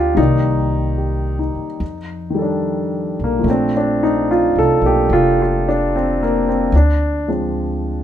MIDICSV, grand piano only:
0, 0, Header, 1, 2, 480
1, 0, Start_track
1, 0, Tempo, 817439
1, 104, Time_signature, 4, 2, 24, 8
1, 4718, End_track
2, 0, Start_track
2, 0, Title_t, "Grand piano"
2, 0, Program_c, 0, 0
2, 0, Control_c, 0, 64, 127
2, 0, Note_on_c, 0, 53, 51
2, 0, Note_on_c, 0, 55, 38
2, 0, Note_on_c, 0, 58, 48
2, 0, Note_on_c, 0, 60, 43
2, 0, Note_on_c, 0, 62, 71
2, 0, Note_on_c, 0, 65, 75
2, 0, Note_on_c, 0, 67, 82
2, 85, Note_off_c, 0, 53, 0
2, 85, Note_on_c, 0, 51, 48
2, 86, Note_off_c, 0, 65, 0
2, 88, Note_off_c, 0, 55, 0
2, 95, Note_off_c, 0, 58, 0
2, 96, Note_on_c, 0, 55, 42
2, 100, Note_on_c, 0, 63, 76
2, 104, Note_on_c, 0, 58, 42
2, 109, Note_off_c, 0, 60, 0
2, 112, Control_c, 0, 64, 0
2, 113, Note_off_c, 0, 62, 0
2, 114, Note_on_c, 0, 74, 52
2, 115, Note_off_c, 0, 67, 0
2, 207, Control_c, 0, 64, 127
2, 575, Note_on_c, 0, 67, 37
2, 808, Note_off_c, 0, 63, 0
2, 816, Note_on_c, 0, 63, 41
2, 961, Note_off_c, 0, 67, 0
2, 1054, Note_off_c, 0, 51, 0
2, 1060, Note_off_c, 0, 55, 0
2, 1063, Note_off_c, 0, 58, 0
2, 1068, Note_off_c, 0, 74, 0
2, 1071, Control_c, 0, 64, 0
2, 1157, Note_off_c, 0, 63, 0
2, 1173, Control_c, 0, 64, 127
2, 1352, Note_on_c, 0, 51, 44
2, 1378, Note_on_c, 0, 55, 44
2, 1400, Note_on_c, 0, 69, 42
2, 1421, Note_on_c, 0, 62, 51
2, 1902, Note_on_c, 0, 58, 64
2, 1992, Note_on_c, 0, 53, 42
2, 2006, Note_off_c, 0, 51, 0
2, 2017, Note_on_c, 0, 57, 38
2, 2019, Note_off_c, 0, 55, 0
2, 2030, Note_off_c, 0, 69, 0
2, 2034, Control_c, 0, 64, 0
2, 2035, Note_on_c, 0, 60, 41
2, 2041, Note_off_c, 0, 62, 0
2, 2044, Note_off_c, 0, 58, 0
2, 2045, Note_off_c, 0, 60, 0
2, 2054, Note_on_c, 0, 60, 72
2, 2061, Note_on_c, 0, 62, 49
2, 2150, Control_c, 0, 64, 127
2, 2191, Note_off_c, 0, 60, 0
2, 2204, Note_off_c, 0, 62, 0
2, 2213, Note_on_c, 0, 62, 66
2, 2350, Note_off_c, 0, 62, 0
2, 2367, Note_on_c, 0, 63, 70
2, 2508, Note_off_c, 0, 63, 0
2, 2531, Note_on_c, 0, 65, 71
2, 2685, Note_off_c, 0, 65, 0
2, 2692, Note_on_c, 0, 69, 79
2, 2829, Note_on_c, 0, 58, 39
2, 2831, Note_off_c, 0, 69, 0
2, 2846, Note_on_c, 0, 62, 41
2, 2855, Note_on_c, 0, 67, 69
2, 2992, Note_off_c, 0, 67, 0
2, 3011, Note_on_c, 0, 65, 82
2, 3165, Note_off_c, 0, 65, 0
2, 3184, Note_on_c, 0, 65, 66
2, 3329, Note_off_c, 0, 62, 0
2, 3331, Note_off_c, 0, 65, 0
2, 3338, Note_on_c, 0, 62, 66
2, 3488, Note_off_c, 0, 62, 0
2, 3498, Note_on_c, 0, 60, 62
2, 3633, Note_off_c, 0, 60, 0
2, 3647, Note_off_c, 0, 58, 0
2, 3656, Note_on_c, 0, 58, 65
2, 3806, Note_off_c, 0, 58, 0
2, 3810, Note_on_c, 0, 60, 65
2, 3930, Note_off_c, 0, 53, 0
2, 3942, Note_off_c, 0, 57, 0
2, 3948, Note_off_c, 0, 60, 0
2, 3955, Control_c, 0, 64, 0
2, 3970, Note_on_c, 0, 62, 68
2, 4039, Control_c, 0, 64, 127
2, 4276, Note_off_c, 0, 62, 0
2, 4276, Note_on_c, 0, 53, 40
2, 4276, Note_on_c, 0, 56, 36
2, 4280, Note_on_c, 0, 60, 37
2, 4285, Note_on_c, 0, 62, 45
2, 4718, Note_off_c, 0, 53, 0
2, 4718, Note_off_c, 0, 56, 0
2, 4718, Note_off_c, 0, 60, 0
2, 4718, Note_off_c, 0, 62, 0
2, 4718, End_track
0, 0, End_of_file